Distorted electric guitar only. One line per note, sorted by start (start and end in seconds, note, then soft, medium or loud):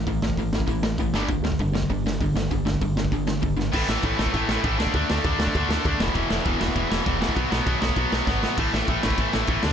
0.07 0.20 A2 medium
0.07 0.21 E3 medium
0.24 0.36 A2 medium
0.24 0.36 E3 medium
0.39 0.51 A2 medium
0.39 0.52 E3 medium
0.55 0.66 A2 medium
0.55 0.67 E3 medium
0.67 0.81 A2 medium
0.67 0.82 E3 medium
0.83 0.97 A2 medium
0.83 0.97 E3 medium
1.00 1.13 A2 medium
1.00 1.12 E3 medium
1.15 1.28 G2 medium
1.15 1.28 D3 medium
1.15 1.29 G3 loud
1.30 1.43 G2 medium
1.30 1.43 D3 medium
1.44 1.57 G2 medium
1.44 1.58 D3 medium
1.60 1.72 G2 medium
1.60 1.73 D3 medium
1.73 1.87 G2 medium
1.73 1.88 D3 medium
1.90 2.03 G2 medium
1.90 2.03 D3 medium
2.06 2.19 G2 medium
2.06 2.19 D3 medium
2.21 2.34 G2 medium
2.21 2.34 D3 medium
2.36 2.49 G2 medium
2.36 2.50 D3 medium
2.51 2.64 G2 medium
2.51 2.65 D3 medium
2.65 2.79 G2 medium
2.65 2.80 D3 medium
2.82 2.95 G2 medium
2.82 2.95 D3 medium
2.98 3.11 G2 medium
2.98 3.11 D3 medium
3.13 3.26 G2 medium
3.13 3.26 D3 medium
3.27 3.40 G2 medium
3.27 3.41 D3 medium
3.42 3.55 G2 medium
3.42 3.55 D3 medium
3.56 3.70 G2 medium
3.56 3.71 D3 medium
3.72 3.89 A2 medium
3.72 3.89 E3 loud
3.72 3.88 A3 loud
3.89 4.03 A2 medium
3.89 4.04 E3 medium
3.89 4.04 A3 medium
4.04 4.18 A2 medium
4.04 4.17 E3 medium
4.04 4.17 A3 loud
4.18 4.31 A2 medium
4.18 4.32 E3 medium
4.18 4.32 A3 loud
4.32 4.49 A2 medium
4.32 4.49 E3 medium
4.32 4.49 A3 medium
4.50 4.63 A2 medium
4.50 4.63 E3 medium
4.50 4.64 A3 loud
4.64 4.78 A2 medium
4.64 4.78 E3 medium
4.64 4.78 A3 loud
4.79 4.95 D3 medium
4.79 4.94 A3 loud
4.79 4.94 D4 loud
4.96 5.09 D3 medium
4.96 5.10 A3 loud
4.96 5.10 D4 loud
5.10 5.25 D3 medium
5.10 5.25 A3 medium
5.10 5.24 D4 medium
5.25 5.39 D3 medium
5.25 5.40 A3 medium
5.25 5.41 D4 medium
5.40 5.56 D3 loud
5.40 5.56 A3 loud
5.40 5.56 D4 loud
5.57 5.70 D3 medium
5.57 5.71 A3 medium
5.57 5.71 D4 loud
5.71 5.86 D3 medium
5.71 5.85 A3 loud
5.71 5.85 D4 loud
5.86 6.00 D3 medium
5.86 6.00 A3 medium
5.86 6.00 D4 loud
6.01 6.14 E2 loud
6.01 6.13 B2 loud
6.01 6.13 E3 loud
6.15 6.29 E2 medium
6.15 6.29 B2 loud
6.15 6.29 E3 loud
6.30 6.45 E2 medium
6.30 6.45 B2 medium
6.30 6.44 E3 medium
6.45 6.59 E2 medium
6.45 6.59 B2 medium
6.45 6.61 E3 loud
6.60 6.75 E2 loud
6.60 6.74 B2 loud
6.60 6.74 E3 loud
6.75 6.89 E2 medium
6.75 6.89 B2 medium
6.75 6.90 E3 medium
6.90 7.06 E2 medium
6.90 7.05 B2 loud
6.90 7.05 E3 loud
7.06 7.19 E2 medium
7.06 7.20 B2 medium
7.06 7.20 E3 medium
7.20 7.35 E2 medium
7.20 7.34 B2 medium
7.20 7.35 E3 loud
7.36 7.52 B2 loud
7.36 7.51 F#3 medium
7.36 7.50 B3 loud
7.51 7.65 B2 medium
7.51 7.66 F#3 medium
7.51 7.67 B3 medium
7.66 7.82 B2 medium
7.66 7.81 F#3 medium
7.66 7.80 B3 loud
7.81 7.95 B2 medium
7.81 7.96 F#3 loud
7.81 7.96 B3 loud
7.96 8.12 B2 medium
7.96 8.12 F#3 loud
7.96 8.10 B3 medium
8.12 8.26 B2 medium
8.12 8.27 F#3 loud
8.12 8.27 B3 loud
8.27 8.43 B2 medium
8.27 8.43 F#3 loud
8.27 8.42 B3 loud
8.43 8.57 B2 medium
8.43 8.58 F#3 medium
8.43 8.57 B3 medium
8.58 8.73 A2 medium
8.58 8.73 E3 loud
8.58 8.73 A3 loud
8.73 8.87 A2 medium
8.73 8.88 E3 medium
8.73 8.88 A3 medium
8.89 9.03 A2 medium
8.89 9.02 E3 medium
8.89 9.02 A3 medium
9.03 9.18 A2 medium
9.03 9.19 E3 medium
9.03 9.19 A3 loud
9.19 9.33 A2 medium
9.19 9.33 E3 medium
9.19 9.33 A3 medium
9.34 9.47 A2 medium
9.34 9.47 E3 loud
9.34 9.49 A3 medium
9.48 9.63 A2 medium
9.48 9.63 E3 medium
9.48 9.63 A3 loud
9.64 9.73 D3 loud
9.64 9.73 A3 loud
9.64 9.73 D4 loud